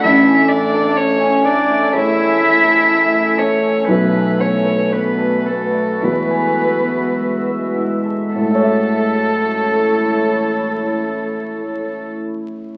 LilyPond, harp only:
\new Staff \with { instrumentName = "Harp" } { \time 4/4 \key a \major \tempo 4 = 54 a'16 gis''16 e''16 a'16 cis'''16 gis''16 a'8 a'16 cis''8 a'16 e''16 e''16 a'16 cis''16 | b'16 a''16 fis''16 b'16 d''16 a''16 b'16 d''16 e'16 gis''8 e'16 b'16 b'16 e'16 a'16~ | a'1 | }